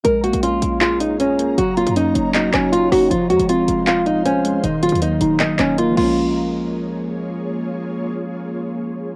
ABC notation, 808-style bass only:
X:1
M:4/4
L:1/16
Q:1/4=157
K:Bbm
V:1 name="808-style bass" clef=bass
B,,,3 B,,,3 B,,,8- B,,,2 | G,,,3 G,,3 G,,,4 G,,,4 G,,,2 | F,,,2 F,, F,,,3 F,,,8- F,,,2 | E,,,3 E,,3 E,,,4 E,,,4 B,,,2- |
B,,,16 | z16 |]